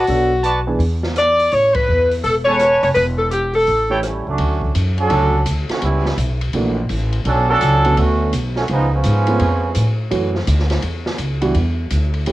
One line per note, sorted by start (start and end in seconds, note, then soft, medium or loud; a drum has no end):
0.00 0.65 F#4 medium
0.07 0.77 B1 medium
0.07 0.29 F#3 medium
0.07 0.29 B3 medium
0.07 0.29 D4 medium
0.07 0.30 A4 medium
0.07 open hi-hat soft
0.44 0.60 F#4 medium
0.44 0.60 B4 medium
0.44 0.60 D5 medium
0.44 0.60 A5 loud
0.44 closed hi-hat soft
0.67 0.79 E3 medium
0.67 0.79 B3 medium
0.67 0.79 D4 medium
0.67 0.79 G#4 medium
0.79 1.48 E2 medium
0.79 open hi-hat soft
1.03 snare soft
1.16 1.50 D5 loud
1.16 cross-stick medium
1.16 closed hi-hat medium
1.39 open hi-hat soft
1.51 1.86 A1 medium
1.51 1.75 C#5 medium
1.51 open hi-hat soft
1.74 2.11 B4 medium
1.74 kick medium
1.74 ride medium
1.88 2.22 E2 medium
2.11 open hi-hat soft
2.24 2.79 E1 medium
2.24 2.34 A4 medium
2.24 open hi-hat soft
2.45 2.58 G#3 soft
2.45 2.58 B3 medium
2.45 2.58 C#4 soft
2.45 2.59 A4 medium
2.45 2.94 B4 medium
2.45 2.79 C#5 medium
2.45 2.94 C#5 medium
2.45 2.94 G#5 medium
2.45 2.94 A5 medium
2.59 cross-stick medium
2.59 closed hi-hat medium
2.82 2.95 F1 medium
2.82 2.88 C#5 medium
2.82 open hi-hat soft
2.94 3.64 E1 medium
2.94 3.05 B4 medium
2.94 open hi-hat soft
3.17 3.30 A4 medium
3.31 3.53 G4 medium
3.31 closed hi-hat medium
3.53 3.99 A4 medium
3.53 open hi-hat soft
3.67 4.23 A1 medium
3.67 open hi-hat soft
3.90 4.02 E3 soft
3.90 4.02 A3 medium
3.90 4.02 C#4 soft
3.90 3.99 E4 medium
3.90 4.02 G4 medium
3.90 3.99 A4 medium
3.90 3.99 C#5 medium
3.90 3.99 G5 medium
4.03 4.26 G3 medium
4.03 4.26 A3 medium
4.03 4.26 C#4 medium
4.03 4.26 E4 medium
4.03 cross-stick medium
4.03 closed hi-hat medium
4.27 4.38 C#2 medium
4.27 4.72 F#3 medium
4.27 4.72 A3 medium
4.27 4.73 C#4 medium
4.27 4.72 D4 medium
4.38 4.74 D2 medium
4.38 ride medium
4.62 kick medium
4.75 5.09 F#2 medium
4.75 hi-hat pedal medium
4.75 ride medium
4.98 5.43 F#3 loud
4.98 5.43 C#4 medium
4.98 5.43 D4 loud
4.98 5.43 A4 loud
4.98 ride soft
5.09 5.45 C#2 medium
5.09 5.31 D3 medium
5.09 5.31 F#3 soft
5.09 5.31 A3 medium
5.09 5.31 C#4 medium
5.09 5.31 F#4 medium
5.09 ride medium
5.46 5.68 D2 medium
5.46 hi-hat pedal medium
5.46 ride medium
5.69 5.82 D3 medium
5.69 5.82 A3 medium
5.69 5.80 C#4 medium
5.69 5.82 F#4 medium
5.69 muted upright bass stroke soft
5.69 snare medium
5.69 ride soft
5.81 6.17 C#2 medium
5.81 6.15 G3 medium
5.81 6.15 B3 medium
5.81 6.15 C#4 medium
5.81 6.15 E4 medium
5.81 ride medium
6.05 snare soft
6.17 6.53 B1 medium
6.17 hi-hat pedal medium
6.17 ride medium
6.41 ride medium
6.53 6.89 A#1 medium
6.53 6.75 E3 medium
6.53 6.75 A3 medium
6.53 6.75 A#3 soft
6.53 6.75 D4 soft
6.53 6.75 F#4 medium
6.53 ride medium
6.89 7.25 A1 medium
6.89 hi-hat pedal medium
6.89 ride medium
7.13 ride soft
7.25 7.60 B1 medium
7.25 7.47 F#3 medium
7.25 7.47 C#4 medium
7.25 7.47 D4 loud
7.25 7.47 A4 loud
7.25 ride medium
7.49 7.94 F#3 medium
7.49 7.94 C#4 medium
7.49 7.94 D4 loud
7.49 7.94 A4 loud
7.61 7.97 C#2 loud
7.61 hi-hat pedal medium
7.61 ride medium
7.85 8.31 D3 medium
7.85 8.31 A3 medium
7.85 8.31 B3 medium
7.85 8.31 C#4 medium
7.85 8.31 F#4 medium
7.85 ride soft
7.97 8.32 D2 medium
7.97 8.31 D3 medium
7.97 8.31 A3 medium
7.97 8.31 C#4 medium
7.97 8.31 F#4 medium
7.97 ride medium
8.33 8.68 B1 medium
8.33 hi-hat pedal medium
8.33 ride medium
8.56 8.63 D3 medium
8.56 8.63 A3 medium
8.56 8.63 C#4 medium
8.56 8.63 F#4 medium
8.56 snare soft
8.68 9.04 C#2 medium
8.68 8.91 F3 medium
8.68 8.91 G#3 medium
8.68 8.91 B3 medium
8.68 8.91 D#4 medium
8.68 ride medium
8.92 9.96 F3 medium
8.92 9.96 G#3 medium
8.92 9.96 B3 medium
8.92 9.96 C#4 medium
9.03 9.40 G#2 loud
9.03 hi-hat pedal medium
9.03 ride medium
9.27 9.39 F3 medium
9.27 9.39 A3 medium
9.27 9.39 B3 medium
9.27 9.39 C#4 medium
9.27 9.39 G#4 medium
9.27 ride medium
9.39 9.75 F2 medium
9.39 ride medium
9.74 10.11 A2 medium
9.74 hi-hat pedal medium
9.74 ride medium
10.10 10.47 F#2 medium
10.10 10.32 E3 medium
10.10 10.32 F#3 soft
10.10 10.32 A3 medium
10.10 10.32 C#4 medium
10.10 10.32 F#4 medium
10.10 ride medium
10.35 snare soft
10.47 10.82 D2 loud
10.47 hi-hat pedal medium
10.47 ride medium
10.59 snare soft
10.70 snare soft
10.70 ride medium
10.82 11.18 E2 medium
10.82 ride medium
11.06 snare medium
11.18 11.54 C#2 medium
11.18 hi-hat pedal medium
11.18 ride medium
11.41 11.54 E3 medium
11.41 11.53 G3 medium
11.41 11.53 B3 medium
11.41 11.54 D4 soft
11.41 11.54 F#4 medium
11.41 ride medium
11.54 11.90 E2 medium
11.54 ride medium
11.90 12.26 D2 medium
11.90 hi-hat pedal medium
11.90 ride medium
12.14 ride soft
12.26 12.32 A1 medium
12.26 12.32 E3 medium
12.26 12.32 A3 soft
12.26 12.32 B3 soft
12.26 12.32 C#4 soft
12.26 12.32 G4 medium
12.26 ride medium